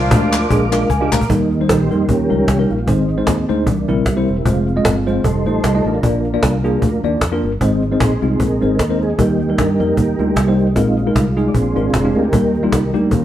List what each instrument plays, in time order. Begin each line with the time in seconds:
Already playing: tine electric piano A#2, horn section F3 G#3 D4 F4, tonewheel organ A#4 F5 D6
0.10 fingered electric bass D2, tine electric piano G#3 D4 F4 G4, cajon bass, cajon slap
0.32 cajon slap, clap
0.50 fingered electric bass A#1, tine electric piano G#3 D4 F4 G#4, cajon bass
0.61 cajon slap
0.72 tine electric piano G#3 D4 F4 A#4 F5, clap
0.90 fingered electric bass C#2, tine electric piano G#5, cajon bass, cajon slap
1.01 tine electric piano G#3 D4 F4 G4
1.12 fingered electric bass D2, tine electric piano A#5, cajon bass, clap
1.21 cajon bass
1.28 fingered electric bass D#2, tonewheel organ D#3 G3 A#3 D#4, tine electric piano D#3 G3 A#3 D#4 A#4, cajon bass
1.52 cajon slap
1.60 tine electric piano G3 A#3 D#4 C5
1.69 fingered electric bass A#1, tonewheel organ D#4 G4 C5, cajon bass, cajon slap
1.91 fingered electric bass F2, tine electric piano G3 A#3 D#4 A#4, cajon slap
2.07 fingered electric bass D#2, tine electric piano D#3, tonewheel organ F3 G3 C#4 G4 A#4, cajon bass
2.30 fingered electric bass C#2, tine electric piano G3 C#4 D#4 A#4, cajon slap
2.48 fingered electric bass C2, tonewheel organ G4, cajon bass, cajon slap
2.58 tine electric piano G3 C#4 D#4 A#4
2.70 fingered electric bass A#1, tonewheel organ F4, cajon slap
2.87 fingered electric bass G#1, tine electric piano G#2 G#3 C4 D#4 C5, tonewheel organ D#3 G#3 C4 D#4, cajon bass
3.09 cajon slap
3.17 tine electric piano G#3 C4 D#4 C5
3.27 fingered electric bass D#2, cajon bass, cajon slap
3.48 fingered electric bass D2, tine electric piano G#3 C4 D#4 C5, cajon slap
3.67 fingered electric bass C2, tine electric piano C3, tonewheel organ E3 A#3 D4, cajon bass
3.88 fingered electric bass A#1, tine electric piano G3 C4 E4 A#4, cajon slap
4.06 fingered electric bass C2, tonewheel organ G3 A#3 E4, cajon bass, cajon slap
4.16 tine electric piano G3 C4 E4 C5
4.28 fingered electric bass E1, cajon slap
4.45 fingered electric bass F1, tonewheel organ F3 G#3 C4 F4, tine electric piano G#3 C4 F4 C5, cajon bass
4.67 cajon slap
4.76 tine electric piano G#3 C4 F4 D#5
4.85 fingered electric bass G1, cajon bass, cajon slap
5.07 tine electric piano G#3 C4 F4 C5, cajon slap
5.24 fingered electric bass F1, tonewheel organ G3 A3 D#4 A4 C5, cajon bass
5.46 fingered electric bass A1, tine electric piano A3 D#4 F4 C5, cajon slap
5.64 fingered electric bass C2, cajon bass, cajon slap
5.74 tine electric piano A3 D#4 F4 D#5
5.85 fingered electric bass A1, tonewheel organ D4 F4 A#4, cajon slap
6.03 fingered electric bass A#1, tine electric piano A#2 A#3 D4 F4 D5, tonewheel organ F3 A#3 D4, cajon bass
6.25 cajon slap
6.34 tine electric piano A#3 D4 F4 D5
6.43 fingered electric bass C2, cajon bass, cajon slap
6.64 tine electric piano A#3 D4 F4 G#4, cajon slap
6.82 fingered electric bass D2, cajon bass
6.92 cajon slap
7.03 fingered electric bass D#2, tonewheel organ F3 A#3 D4, tine electric piano A#3 D4 F4 D5, cajon slap
7.21 fingered electric bass F2, cajon bass, cajon slap
7.32 tine electric piano A#3 D4 F4 A#4
7.43 fingered electric bass G1, cajon slap
7.61 fingered electric bass G#1, tine electric piano G#2 G#3 C4 D#4 C5, tonewheel organ G#3 C4 D#4, cajon bass
7.83 cajon slap
7.92 tine electric piano G#3 C4 D#4 C5
8.00 fingered electric bass A#1, tonewheel organ D#4 G#4 C5, cajon bass, cajon slap
8.22 fingered electric bass C2, tine electric piano G#3 C4 D#4 F4, tonewheel organ G#3 C4 D#4, cajon slap
8.40 fingered electric bass A#1, tonewheel organ D#4 A#4, cajon bass
8.61 fingered electric bass G#1, tine electric piano G#3 C4 D#4 C5, cajon slap
8.79 fingered electric bass D#2, cajon bass, cajon slap
8.90 tine electric piano G#3 C4 D#4 C5
9.01 tonewheel organ G#4, cajon slap
9.18 fingered electric bass D#2, tine electric piano D#3 G3 A#3 D#4 A#4, tonewheel organ G3 A#3 D#4 G4, cajon bass
9.40 cajon slap
9.49 tine electric piano G3 A#3 D#4 A#4
9.58 fingered electric bass G2, tonewheel organ D#4 G4 A#4, cajon bass, cajon slap
9.80 fingered electric bass F2, tine electric piano G3 A#3 D#4 A#4, cajon slap
9.97 fingered electric bass D#2, tonewheel organ D#4 G4 A#4, cajon bass
10.19 fingered electric bass D2, tine electric piano G3 A#3 D#4 F4, cajon slap
10.36 fingered electric bass C2, tonewheel organ G3 A#3 D#4, cajon bass, cajon slap
10.47 tine electric piano G3 A#3 D#4 C5
10.58 cajon slap
10.75 fingered electric bass A#1, tine electric piano A#2 G#3 D#4 F4 A#4, tonewheel organ G#3 C4 D#4 F4, cajon bass
10.98 cajon slap
11.07 tine electric piano G#3 D#4 F4 A#4
11.15 fingered electric bass C2, cajon bass, cajon slap
11.37 tine electric piano G#3 D#4 F4 G#4, cajon slap
11.48 tonewheel organ D5
11.54 fingered electric bass A#1, tine electric piano A#2, tonewheel organ G#3 C4 D4 F4 G#4 C5, cajon bass
11.76 fingered electric bass G#1, tine electric piano G#3 D4 F4 A#4, cajon slap
11.93 fingered electric bass F1, cajon bass, cajon slap
12.04 tine electric piano G#3 D4 F4 G4
12.15 fingered electric bass D2, tonewheel organ D#4 G4 A#4, cajon slap
12.32 fingered electric bass D#2, tine electric piano D#3 G3 A#3 D#4 A#4, tonewheel organ G3 A#3 D#4, cajon bass
12.55 cajon slap
12.63 tine electric piano G3 A#3 D#4 F4
12.72 fingered electric bass C2, cajon bass, cajon slap
12.94 fingered electric bass D2, tine electric piano G3 A#3 D#4 G4, cajon slap
13.11 fingered electric bass D#2, tine electric piano D#3, tonewheel organ G3 C#4 F4, cajon bass
13.22 cajon slap